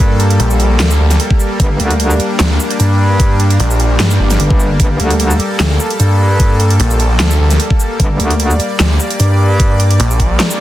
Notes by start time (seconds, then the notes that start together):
Already playing: G2 G3 A#3 A4
0.20 closed hi-hat
0.30 closed hi-hat
0.40 A#1, closed hi-hat
0.51 shaker
0.60 closed hi-hat
0.80 D2, snare, clap, closed hi-hat
0.91 shaker
1.00 D2
1.11 snare, closed hi-hat, shaker
1.20 closed hi-hat
1.31 kick
1.40 shaker
1.60 G1 D4, kick, closed hi-hat
1.80 D2, closed hi-hat
1.90 closed hi-hat
2.00 closed hi-hat
2.10 shaker
2.20 closed hi-hat
2.40 D2, snare, clap, closed hi-hat, shaker
2.60 shaker
2.70 closed hi-hat
2.80 G2, closed hi-hat, shaker
3.20 kick, closed hi-hat
3.40 closed hi-hat
3.50 closed hi-hat
3.60 A#1, closed hi-hat
3.70 shaker
3.80 closed hi-hat
4.00 G2, snare, clap, closed hi-hat
4.10 shaker
4.20 G1
4.30 snare, closed hi-hat, shaker
4.40 G1, closed hi-hat
4.50 kick
4.60 shaker
4.80 G1 A4, kick, closed hi-hat
5.00 D2, closed hi-hat
5.10 closed hi-hat
5.20 closed hi-hat
5.30 shaker
5.40 closed hi-hat
5.60 D2, snare, clap, closed hi-hat, shaker
5.80 shaker
5.90 closed hi-hat
6.00 G2, closed hi-hat, shaker
6.40 kick, closed hi-hat
6.60 closed hi-hat
6.70 closed hi-hat
6.80 A#1, closed hi-hat
6.90 shaker
7.00 closed hi-hat
7.20 D2, snare, clap, closed hi-hat
7.30 shaker
7.40 D2
7.50 snare, closed hi-hat, shaker
7.60 closed hi-hat
7.70 kick
7.80 shaker
8.00 G1 D5, kick, closed hi-hat
8.20 D2, closed hi-hat
8.30 closed hi-hat
8.40 closed hi-hat
8.50 shaker
8.60 closed hi-hat
8.80 D2, snare, clap, closed hi-hat, shaker
9.00 shaker
9.10 closed hi-hat
9.20 G2, closed hi-hat, shaker
9.60 kick, closed hi-hat
9.80 closed hi-hat
9.91 closed hi-hat
10.00 A#1, closed hi-hat
10.11 shaker
10.20 kick, closed hi-hat
10.40 snare, clap, closed hi-hat
10.50 shaker